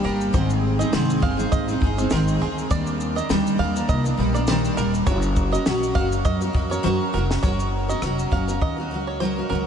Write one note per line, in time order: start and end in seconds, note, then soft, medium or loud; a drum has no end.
0.03 0.29 G1 medium
0.03 0.33 G3 medium
0.03 0.34 A#3 medium
0.03 0.34 D4 medium
0.03 0.35 G4 medium
0.03 0.20 A#4 medium
0.21 shaker soft
0.33 0.82 G#1 loud
0.33 0.79 G#2 medium
0.33 0.80 D#3 medium
0.33 0.80 G#3 medium
0.33 0.79 C4 medium
0.33 0.78 D#4 medium
0.33 0.78 G#4 medium
0.33 0.50 C5 loud
0.33 kick loud
0.33 shaker medium
0.50 shaker medium
0.79 0.92 G#3 medium
0.79 0.92 C4 medium
0.79 0.93 D#4 medium
0.79 0.93 G#4 medium
0.79 0.92 D#5 medium
0.79 shaker medium
0.92 1.18 C2 medium
0.92 1.22 G#2 medium
0.92 1.22 D#3 medium
0.92 1.19 G#3 loud
0.92 1.20 C4 medium
0.92 1.21 D#4 loud
0.92 1.22 G#4 medium
0.92 snare loud
0.92 shaker medium
1.10 shaker medium
1.20 1.47 G1 medium
1.20 1.38 G#3 medium
1.20 1.38 C4 medium
1.20 1.37 D#4 medium
1.20 1.36 G#4 medium
1.20 1.51 F5 medium
1.20 kick medium
1.37 1.69 G#3 soft
1.37 1.68 C4 medium
1.37 1.68 D#4 medium
1.37 1.67 G#4 medium
1.37 shaker medium
1.52 1.76 G#1 medium
1.52 1.67 D#5 medium
1.52 kick loud
1.52 shaker medium
1.68 1.79 G#3 soft
1.68 1.81 C4 medium
1.68 1.82 D#4 medium
1.68 1.81 G#4 medium
1.68 shaker soft
1.81 2.06 G1 medium
1.81 1.97 G#3 medium
1.81 1.98 C4 medium
1.81 1.98 D#4 medium
1.81 1.96 G#4 medium
1.81 kick medium
1.97 2.11 G#3 medium
1.97 2.12 C4 medium
1.97 2.12 D#4 medium
1.97 2.11 G#4 medium
1.97 2.11 C5 medium
1.97 shaker medium
2.10 2.36 G#1 loud
2.10 2.41 G#2 medium
2.10 2.41 D#3 loud
2.10 2.38 G#3 loud
2.10 2.40 C4 loud
2.10 2.40 D#4 loud
2.10 2.41 G#4 loud
2.10 2.27 A#4 medium
2.10 snare loud
2.10 shaker medium
2.28 shaker medium
2.40 2.65 D2 medium
2.40 2.70 G#3 medium
2.40 2.70 C4 medium
2.40 2.71 D#4 medium
2.40 2.57 G#4 medium
2.40 2.71 G#4 medium
2.58 shaker soft
2.70 3.19 D#2 loud
2.70 3.16 D#3 medium
2.70 3.16 G3 medium
2.70 3.17 A#3 medium
2.70 3.16 D4 medium
2.70 3.14 A#4 medium
2.70 2.86 D5 loud
2.70 kick loud
2.70 shaker medium
2.87 shaker medium
3.00 shaker medium
3.15 3.29 A#3 soft
3.15 3.30 D4 medium
3.15 3.29 A#4 medium
3.15 3.29 D#5 medium
3.15 shaker medium
3.29 3.54 D2 loud
3.29 3.59 D#3 medium
3.29 3.57 G3 loud
3.29 3.58 A#3 medium
3.29 3.59 D4 medium
3.29 3.60 A#4 medium
3.29 snare loud
3.29 shaker medium
3.47 shaker medium
3.58 3.83 D#2 medium
3.58 3.75 G3 medium
3.58 3.75 A#3 medium
3.58 3.76 D4 medium
3.58 3.74 A#4 medium
3.58 3.87 F5 medium
3.75 4.06 A#3 soft
3.75 4.05 D4 medium
3.75 4.03 A#4 medium
3.75 shaker medium
3.89 4.13 C2 medium
3.89 4.04 D#5 medium
3.89 kick loud
3.89 shaker medium
4.04 4.17 A#3 medium
4.04 4.18 D4 medium
4.04 4.18 A#4 medium
4.04 shaker medium
4.17 4.67 A#1 loud
4.17 4.34 G3 medium
4.17 4.34 A#3 medium
4.17 4.34 D4 medium
4.17 4.33 A#4 medium
4.34 4.47 A#3 medium
4.34 4.48 D4 medium
4.34 4.47 A#4 medium
4.34 4.48 D5 medium
4.34 shaker medium
4.47 4.77 D#3 loud
4.47 4.76 G3 loud
4.47 4.77 A#3 loud
4.47 4.78 D4 loud
4.47 4.78 A#4 loud
4.47 4.63 C5 medium
4.47 snare loud
4.47 shaker medium
4.65 shaker medium
4.77 5.02 D#1 medium
4.77 5.06 G3 medium
4.77 5.07 A#3 medium
4.77 5.08 D4 medium
4.77 4.93 A#4 medium
4.77 5.07 A#4 medium
4.77 shaker medium
4.94 shaker medium
5.06 5.55 F#1 loud
5.06 5.52 F#3 medium
5.06 5.53 C#4 medium
5.06 5.52 F#4 medium
5.06 5.50 A#4 medium
5.06 5.22 C#5 loud
5.06 kick loud
5.06 shaker medium
5.22 shaker medium
5.36 kick medium
5.36 shaker medium
5.51 5.65 C#4 soft
5.51 5.66 F#4 medium
5.51 5.65 A#4 medium
5.51 5.65 D#5 medium
5.51 shaker medium
5.66 5.90 A#1 medium
5.66 5.94 F#3 medium
5.66 5.95 C#4 medium
5.66 5.96 F#4 loud
5.66 5.96 A#4 loud
5.66 snare loud
5.66 shaker medium
5.83 shaker medium
5.95 6.19 F#1 medium
5.95 6.41 F#3 medium
5.95 6.42 C#4 medium
5.95 6.41 F#4 medium
5.95 6.39 A#4 medium
5.95 6.23 F5 medium
5.95 kick medium
6.12 shaker medium
6.25 6.49 F#2 loud
6.25 6.40 D#5 medium
6.25 kick medium
6.25 shaker medium
6.41 6.53 C#4 medium
6.41 6.54 F#4 medium
6.41 6.54 A#4 medium
6.41 shaker soft
6.53 6.79 F2 loud
6.53 6.70 F#3 medium
6.53 6.71 C#4 medium
6.53 6.70 F#4 medium
6.53 6.68 A#4 medium
6.53 kick loud
6.70 6.82 C#4 soft
6.70 6.83 F#4 medium
6.70 6.83 A#4 medium
6.70 6.83 C#5 medium
6.70 shaker medium
6.83 6.98 F#2 medium
6.83 7.12 F#3 loud
6.83 7.12 C#4 loud
6.83 7.13 F#4 loud
6.83 7.14 A#4 loud
6.83 6.99 C5 medium
7.13 7.38 F1 medium
7.13 7.41 F#3 medium
7.13 7.42 C#4 medium
7.13 7.43 F#4 medium
7.13 7.29 A#4 medium
7.13 7.44 A#4 medium
7.31 snare medium
7.43 7.92 F#1 medium
7.43 7.89 F#3 medium
7.43 7.89 C#4 medium
7.43 7.89 F#4 medium
7.43 7.87 A#4 medium
7.43 7.58 C#5 medium
7.43 kick loud
7.43 shaker medium
7.59 shaker soft
7.88 8.02 C#4 soft
7.88 8.03 F#4 medium
7.88 8.02 A#4 medium
7.88 8.02 D#5 medium
7.88 shaker medium
8.02 8.26 F1 medium
8.02 8.30 F#3 medium
8.02 8.31 C#4 medium
8.02 8.32 F#4 loud
8.02 8.33 A#4 medium
8.02 cross-stick loud
8.02 shaker medium
8.19 shaker soft
8.31 8.56 F#1 medium
8.31 8.48 F#3 medium
8.31 8.48 C#4 medium
8.31 8.48 F#4 medium
8.31 8.46 A#4 medium
8.31 8.60 F5 medium
8.31 kick medium
8.47 8.78 C#4 soft
8.47 8.77 F#4 soft
8.47 8.76 A#4 medium
8.47 cross-stick soft
8.47 shaker medium
8.61 8.91 D#2 medium
8.61 8.77 D#5 medium
8.61 kick medium
8.77 8.91 C#4 soft
8.77 8.91 F#4 medium
8.77 8.91 A#4 medium
8.91 9.40 C#2 medium
8.91 9.19 F#3 medium
8.91 9.20 C#4 medium
8.91 9.21 F#4 medium
8.91 9.21 A#4 medium
9.07 9.20 C#5 medium
9.20 9.37 F#3 medium
9.20 9.37 C#4 medium
9.20 9.37 F#4 medium
9.20 9.35 A#4 medium
9.20 9.36 C5 medium
9.36 9.49 C#4 soft
9.36 9.50 F#4 medium
9.36 9.50 A#4 medium
9.49 9.67 C#2 medium
9.49 9.67 F#3 medium
9.49 9.67 C#4 medium
9.49 9.67 F#4 medium
9.49 9.65 A#4 medium
9.49 9.67 A#4 medium